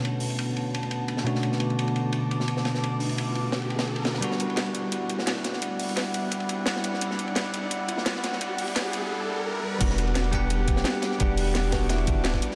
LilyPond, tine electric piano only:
\new Staff \with { instrumentName = "Tine electric piano" } { \time 4/4 \key e \minor \tempo 4 = 172 <b, a cis' d' fis'>2.~ <b, a cis' d' fis'>8 <b, a cis' d' fis'>8~ | <b, a cis' d' fis'>1~ | <b, a cis' d' fis'>2.~ <b, a cis' d' fis'>8 r8 | <g b d' fis'>1~ |
<g b d' fis'>1~ | <g b d' fis'>1~ | <g b d' fis'>2 r2 | <g b d' fis'>4. <g b d' fis''>2~ <g b d' fis''>8 |
<g b d' fis''>4. <g b d' fis'>2~ <g b d' fis'>8 | }